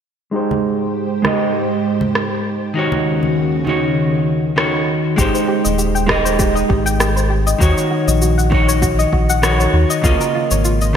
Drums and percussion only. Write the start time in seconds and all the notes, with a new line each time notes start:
0.51 high conga
1.25 cross-stick, high conga
2.01 high conga
2.15 cross-stick
2.92 high conga
3.23 high conga
3.67 high conga
4.58 cross-stick
5.18 kick, cabasa
5.35 cabasa
5.65 cabasa
5.79 cabasa
5.96 cabasa
6.09 kick, cross-stick
6.26 cabasa
6.39 kick, cabasa
6.57 cabasa
6.70 kick
6.87 cabasa
7.00 cross-stick, cabasa
7.17 cabasa
7.47 cabasa
7.61 kick, cabasa
7.78 cabasa
8.08 cabasa
8.22 cabasa
8.39 cabasa
8.52 kick
8.69 cabasa
8.82 kick, cabasa
8.99 cabasa
9.13 kick
9.30 cabasa
9.43 cross-stick, cabasa
9.60 cabasa
9.90 cabasa
10.04 kick, cabasa
10.21 cabasa
10.51 cabasa
10.65 cabasa
10.81 cabasa